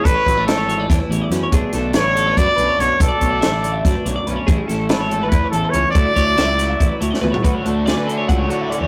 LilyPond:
<<
  \new Staff \with { instrumentName = "Clean electric guitar" } { \time 7/8 \key a \major \tempo 4 = 142 a'16 cis''16 b'16 cis''16 e''16 cis''16 cis''16 d''16 cis''16 b'16 cis''16 d''16 b'16 cis''16 | gis'8 a'8 b'16 cis''16 a'16 b'8 d''16 b'16 cis''16 d''8 | b'16 d''16 cis''16 d''16 e''16 d''16 d''16 e''16 d''16 b'16 cis''16 d''16 b'16 cis''16 | gis'8 a'8 b'16 cis''16 a'16 b'8 cis''16 a'16 b'16 cis''8 |
a'16 d''16 cis''16 d''16 e''16 d''16 d''16 e''16 d''16 b'16 cis''16 d''16 b'16 cis''16 | b'16 cis''16 a'8 d''16 b'16 a'16 cis''16 fis''16 cis''8 e''16 d''16 cis''16 | }
  \new Staff \with { instrumentName = "Trumpet" } { \time 7/8 \key a \major b'4 a'4 r4. | r4 cis''4 d''4 cis''8 | a'2 r4. | r4 a'4 b'8 a'8 cis''8 |
d''2~ d''8 r4 | r2. r8 | }
  \new Staff \with { instrumentName = "Overdriven electric guitar" } { \time 7/8 \key a \major r2. r8 | r2. r8 | r2. r8 | r2. r8 |
r2. r8 | <d a d' fis'>8 <a d' fis'>8 <d a d' fis'>8 <a d' fis'>4 <a d' fis'>8 <d a d' fis'>8 | }
  \new Staff \with { instrumentName = "Clean electric guitar" } { \time 7/8 \key a \major << { d'16 e'16 fis16 a16 d'16 e'16 fis16 a16 d'16 e'8. cis'8 | <d a b d'>8 a8 d'8 fis16 a16 d'4 b8 | d'8 a8 d'8 a8 d'4 cis'8 | e'8 a8 d'16 e'16 a8 e'4 cis'8 |
<d fis a e'>8 fis8 e'8 fis8 e'4 a8 | fis'4 gis'4 fis8 fis'8 cis'8 | } \\ { r4 e4. e,4 | b,4 d4. fis,4 | b,4 d4. fis,4 | a,4 e4. e,4 |
r2 r8 a,4 | d,4. d4 a,4 | } >> }
  \new Staff \with { instrumentName = "Fingered electric bass" } { \clef bass \time 7/8 \key a \major a,,16 r16 a,,8 gis,,4 e,16 r16 a,,16 r16 fis,16 r16 | b,,16 r16 b,,8 a,,4 fis,16 r16 b,,16 r16 b,,16 r16 | b,,16 r16 b,,8 a,,4 fis,16 r16 b,,16 r16 b,,16 r16 | a,,16 r16 a,,8 gis,,4 e,16 r16 a,,16 r16 cis,16 r16 |
d,16 r16 d,8 cis,4 a,,16 r16 d,16 r16 d,16 r16 | d,16 r16 d,8. d8. cis,8 d8 r16 e,16 | }
  \new DrumStaff \with { instrumentName = "Drums" } \drummode { \time 7/8 <hh bd>8 <hh bd>8 <hh sn>8 hh8 <hh bd sn>8 hh8 <hh sn>8 | <hh bd>8 <hh sn>8 <hh sn>8 hh8 <hh bd>8 hh8 <hh sn>8 | <hh bd>8 <hh bd>8 <hh sn>8 hh8 <hh bd sn>8 hh8 hh8 | <hh bd>8 <hh sn>8 <hh sn>8 hh8 <hh bd>8 hh8 hh8 |
<hh bd>8 <hh bd sn>8 <hh sn>8 <hh sn>8 <hh bd>8 hh16 sn16 toml16 tomfh16 | <hh bd>8 hh8 <hh sn>8 hh8 <hh bd>8 hh8 hh8 | }
>>